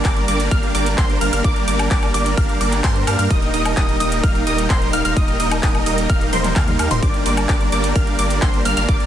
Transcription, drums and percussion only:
0.05 kick, clap, closed hi-hat
0.17 closed hi-hat
0.28 open hi-hat
0.40 closed hi-hat
0.51 kick, closed hi-hat
0.63 closed hi-hat
0.75 open hi-hat
0.86 closed hi-hat
0.98 kick, clap, closed hi-hat
1.10 closed hi-hat
1.21 open hi-hat
1.33 closed hi-hat
1.44 kick, closed hi-hat
1.56 closed hi-hat
1.68 open hi-hat
1.79 closed hi-hat, high woodblock
1.91 kick, clap, closed hi-hat
2.03 closed hi-hat, high woodblock
2.14 open hi-hat
2.26 closed hi-hat
2.37 kick, closed hi-hat
2.49 closed hi-hat
2.61 open hi-hat
2.72 clap, closed hi-hat
2.84 kick, clap, closed hi-hat
2.96 closed hi-hat
3.07 open hi-hat, high woodblock
3.19 closed hi-hat
3.30 kick, closed hi-hat
3.42 closed hi-hat
3.54 open hi-hat
3.65 closed hi-hat, high woodblock
3.77 kick, clap, closed hi-hat
3.89 closed hi-hat
4.00 open hi-hat
4.12 closed hi-hat
4.23 kick, closed hi-hat
4.35 closed hi-hat
4.47 open hi-hat
4.58 closed hi-hat
4.70 kick, clap, closed hi-hat
4.82 closed hi-hat
4.93 open hi-hat
5.05 closed hi-hat
5.17 kick, closed hi-hat
5.28 closed hi-hat
5.40 open hi-hat
5.51 closed hi-hat, high woodblock
5.63 kick, clap, closed hi-hat
5.75 closed hi-hat, high woodblock
5.86 open hi-hat
5.98 closed hi-hat
6.10 kick, closed hi-hat
6.21 closed hi-hat
6.33 open hi-hat, high tom
6.44 clap, closed hi-hat, high tom
6.56 kick, clap, closed hi-hat, mid tom
6.68 closed hi-hat, mid tom
6.79 open hi-hat, high woodblock
6.91 closed hi-hat, mid tom
7.03 kick, closed hi-hat
7.14 closed hi-hat
7.26 open hi-hat
7.37 closed hi-hat, high woodblock
7.49 kick, clap, closed hi-hat
7.61 closed hi-hat
7.72 open hi-hat
7.84 closed hi-hat
7.96 kick, closed hi-hat
8.07 closed hi-hat
8.19 open hi-hat
8.30 closed hi-hat
8.42 kick, clap, closed hi-hat
8.54 closed hi-hat
8.65 open hi-hat
8.77 closed hi-hat
8.89 kick, closed hi-hat
9.00 closed hi-hat

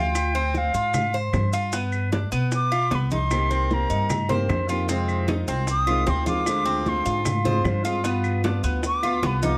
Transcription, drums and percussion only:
0.15 high bongo, high conga, claves, maracas
0.35 high bongo, high conga, maracas
0.54 high bongo, high conga, maracas
0.74 maracas
0.94 high bongo, high conga, low conga, claves, maracas
1.14 high bongo, high conga, maracas
1.33 high bongo, low bongo, high conga, claves, maracas
1.53 high bongo, high conga, maracas
1.72 high bongo, high conga, maracas
1.92 high conga, claves, maracas
2.12 high bongo, high conga, maracas
2.32 high bongo, high conga, maracas
2.52 high bongo, high conga, maracas
2.71 high bongo, high conga, claves, maracas
2.91 high bongo, low bongo, high conga, maracas
3.11 high bongo, high conga, maracas
3.31 high bongo, high conga, claves, maracas
3.51 high bongo, high conga, maracas
3.71 high bongo, high conga, maracas
3.90 maracas
4.10 high bongo, high conga, low conga, claves, maracas
4.30 high bongo, high conga, low conga, maracas
4.49 high bongo, low bongo, high conga, claves, maracas
4.69 high bongo, high conga, maracas
4.89 high bongo, high conga, maracas
5.09 high conga, claves, maracas
5.28 high bongo, high conga, maracas
5.48 high bongo, high conga, maracas
5.67 high bongo, high conga, maracas
5.87 high bongo, high conga, claves, maracas
6.07 high bongo, low bongo, high conga, maracas
6.27 high bongo, high conga, maracas
6.46 high bongo, high conga, claves, maracas
6.66 high bongo, high conga, maracas
6.86 high bongo, high conga, maracas
7.06 maracas
7.25 high bongo, high conga, low conga, claves, maracas
7.45 high bongo, high conga, low conga, maracas
7.65 high bongo, low bongo, high conga, claves, maracas
7.85 high bongo, high conga, maracas
8.04 high bongo, high conga, maracas
8.24 high conga, claves, maracas
8.44 high bongo, high conga, maracas
8.64 high bongo, high conga, maracas
8.83 high bongo, high conga, maracas
9.03 high bongo, high conga, claves, maracas
9.23 high bongo, low bongo, high conga, maracas
9.43 high bongo, high conga, maracas

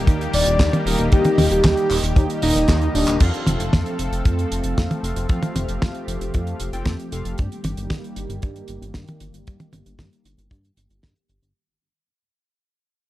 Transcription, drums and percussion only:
0.07 kick, closed hi-hat
0.21 closed hi-hat
0.33 open hi-hat
0.46 closed hi-hat
0.59 kick, snare, clap, closed hi-hat
0.73 closed hi-hat, high tom
0.87 open hi-hat
0.99 closed hi-hat
1.12 kick, closed hi-hat
1.25 closed hi-hat, high tom
1.38 open hi-hat, high tom
1.52 closed hi-hat
1.64 kick, snare, clap, closed hi-hat, high tom
1.77 closed hi-hat
1.90 clap, open hi-hat
2.04 closed hi-hat
2.16 kick, closed hi-hat
2.30 closed hi-hat
2.42 open hi-hat
2.56 snare, closed hi-hat
2.68 kick, snare, clap, closed hi-hat
2.82 closed hi-hat
2.95 open hi-hat
3.07 clap, closed hi-hat
3.20 kick, closed hi-hat, crash
3.34 closed hi-hat
3.47 closed hi-hat, high tom
3.60 closed hi-hat
3.73 kick, snare, closed hi-hat, high tom
3.86 closed hi-hat
3.99 closed hi-hat
4.13 closed hi-hat
4.25 kick, closed hi-hat
4.39 closed hi-hat
4.52 closed hi-hat
4.64 closed hi-hat
4.78 kick, snare, closed hi-hat
4.91 closed hi-hat, high tom
5.04 closed hi-hat
5.16 closed hi-hat
5.29 kick, closed hi-hat
5.43 closed hi-hat, high tom
5.56 closed hi-hat, high tom
5.69 closed hi-hat
5.82 kick, snare, closed hi-hat, high tom
5.95 closed hi-hat
6.08 closed hi-hat
6.21 closed hi-hat
6.34 kick, closed hi-hat
6.47 closed hi-hat
6.60 closed hi-hat
6.73 closed hi-hat
6.85 kick, snare, closed hi-hat
7.00 closed hi-hat
7.12 closed hi-hat
7.25 closed hi-hat
7.38 kick, closed hi-hat
7.52 closed hi-hat
7.64 closed hi-hat, high tom
7.77 closed hi-hat
7.90 kick, snare, closed hi-hat, high tom
8.04 closed hi-hat
8.16 closed hi-hat
8.30 closed hi-hat
8.42 kick, closed hi-hat
8.56 closed hi-hat
8.68 closed hi-hat
8.82 closed hi-hat
8.94 kick, snare, closed hi-hat
9.08 closed hi-hat, high tom
9.20 closed hi-hat
9.34 closed hi-hat
9.47 kick, closed hi-hat
9.60 closed hi-hat, high tom
9.73 closed hi-hat, high tom
9.86 closed hi-hat
9.99 kick, snare, closed hi-hat, high tom
10.13 closed hi-hat
10.25 closed hi-hat
10.39 closed hi-hat
10.51 kick, closed hi-hat
10.65 closed hi-hat
10.77 closed hi-hat
10.90 closed hi-hat
11.03 kick, snare, closed hi-hat
11.16 closed hi-hat
11.29 closed hi-hat
11.43 closed hi-hat

